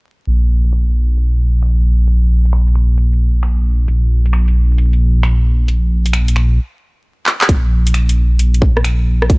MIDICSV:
0, 0, Header, 1, 3, 480
1, 0, Start_track
1, 0, Tempo, 451128
1, 292, Time_signature, 4, 2, 24, 8
1, 9985, End_track
2, 0, Start_track
2, 0, Title_t, "Detuned saw bass"
2, 0, Program_c, 0, 39
2, 291, Note_on_c, 0, 34, 85
2, 4115, Note_off_c, 0, 34, 0
2, 4133, Note_on_c, 0, 34, 84
2, 7012, Note_off_c, 0, 34, 0
2, 7967, Note_on_c, 0, 34, 90
2, 9985, Note_off_c, 0, 34, 0
2, 9985, End_track
3, 0, Start_track
3, 0, Title_t, "Drums"
3, 291, Note_on_c, 9, 42, 51
3, 397, Note_off_c, 9, 42, 0
3, 690, Note_on_c, 9, 42, 53
3, 772, Note_off_c, 9, 42, 0
3, 772, Note_on_c, 9, 26, 90
3, 772, Note_on_c, 9, 42, 49
3, 878, Note_off_c, 9, 26, 0
3, 878, Note_off_c, 9, 42, 0
3, 931, Note_on_c, 9, 42, 51
3, 1038, Note_off_c, 9, 42, 0
3, 1252, Note_on_c, 9, 42, 51
3, 1358, Note_off_c, 9, 42, 0
3, 1409, Note_on_c, 9, 42, 29
3, 1516, Note_off_c, 9, 42, 0
3, 1730, Note_on_c, 9, 26, 94
3, 1730, Note_on_c, 9, 42, 53
3, 1836, Note_off_c, 9, 26, 0
3, 1836, Note_off_c, 9, 42, 0
3, 2209, Note_on_c, 9, 42, 51
3, 2316, Note_off_c, 9, 42, 0
3, 2611, Note_on_c, 9, 42, 53
3, 2690, Note_off_c, 9, 42, 0
3, 2690, Note_on_c, 9, 26, 96
3, 2690, Note_on_c, 9, 42, 53
3, 2797, Note_off_c, 9, 26, 0
3, 2797, Note_off_c, 9, 42, 0
3, 2850, Note_on_c, 9, 42, 52
3, 2931, Note_on_c, 9, 26, 53
3, 2957, Note_off_c, 9, 42, 0
3, 3037, Note_off_c, 9, 26, 0
3, 3168, Note_on_c, 9, 42, 54
3, 3274, Note_off_c, 9, 42, 0
3, 3331, Note_on_c, 9, 42, 30
3, 3437, Note_off_c, 9, 42, 0
3, 3648, Note_on_c, 9, 26, 105
3, 3648, Note_on_c, 9, 42, 54
3, 3755, Note_off_c, 9, 26, 0
3, 3755, Note_off_c, 9, 42, 0
3, 4129, Note_on_c, 9, 42, 51
3, 4235, Note_off_c, 9, 42, 0
3, 4528, Note_on_c, 9, 42, 53
3, 4608, Note_off_c, 9, 42, 0
3, 4608, Note_on_c, 9, 26, 102
3, 4608, Note_on_c, 9, 42, 52
3, 4714, Note_off_c, 9, 26, 0
3, 4714, Note_off_c, 9, 42, 0
3, 4766, Note_on_c, 9, 42, 49
3, 4872, Note_off_c, 9, 42, 0
3, 5088, Note_on_c, 9, 42, 49
3, 5195, Note_off_c, 9, 42, 0
3, 5248, Note_on_c, 9, 42, 30
3, 5354, Note_off_c, 9, 42, 0
3, 5568, Note_on_c, 9, 26, 102
3, 5568, Note_on_c, 9, 42, 54
3, 5675, Note_off_c, 9, 26, 0
3, 5675, Note_off_c, 9, 42, 0
3, 6046, Note_on_c, 9, 42, 48
3, 6152, Note_off_c, 9, 42, 0
3, 6444, Note_on_c, 9, 42, 54
3, 6526, Note_off_c, 9, 42, 0
3, 6526, Note_on_c, 9, 26, 100
3, 6526, Note_on_c, 9, 42, 54
3, 6632, Note_off_c, 9, 26, 0
3, 6632, Note_off_c, 9, 42, 0
3, 6685, Note_on_c, 9, 42, 53
3, 6766, Note_on_c, 9, 26, 57
3, 6791, Note_off_c, 9, 42, 0
3, 6872, Note_off_c, 9, 26, 0
3, 7729, Note_on_c, 9, 39, 76
3, 7835, Note_off_c, 9, 39, 0
3, 7886, Note_on_c, 9, 39, 94
3, 7968, Note_on_c, 9, 36, 102
3, 7971, Note_on_c, 9, 42, 55
3, 7993, Note_off_c, 9, 39, 0
3, 8074, Note_off_c, 9, 36, 0
3, 8077, Note_off_c, 9, 42, 0
3, 8370, Note_on_c, 9, 42, 54
3, 8450, Note_off_c, 9, 42, 0
3, 8450, Note_on_c, 9, 26, 100
3, 8450, Note_on_c, 9, 42, 53
3, 8557, Note_off_c, 9, 26, 0
3, 8557, Note_off_c, 9, 42, 0
3, 8611, Note_on_c, 9, 42, 51
3, 8717, Note_off_c, 9, 42, 0
3, 8930, Note_on_c, 9, 42, 55
3, 9037, Note_off_c, 9, 42, 0
3, 9091, Note_on_c, 9, 42, 32
3, 9170, Note_on_c, 9, 36, 102
3, 9197, Note_off_c, 9, 42, 0
3, 9276, Note_off_c, 9, 36, 0
3, 9329, Note_on_c, 9, 37, 63
3, 9411, Note_on_c, 9, 26, 106
3, 9411, Note_on_c, 9, 42, 56
3, 9436, Note_off_c, 9, 37, 0
3, 9518, Note_off_c, 9, 26, 0
3, 9518, Note_off_c, 9, 42, 0
3, 9812, Note_on_c, 9, 37, 67
3, 9892, Note_on_c, 9, 36, 113
3, 9895, Note_on_c, 9, 42, 55
3, 9918, Note_off_c, 9, 37, 0
3, 9985, Note_off_c, 9, 36, 0
3, 9985, Note_off_c, 9, 42, 0
3, 9985, End_track
0, 0, End_of_file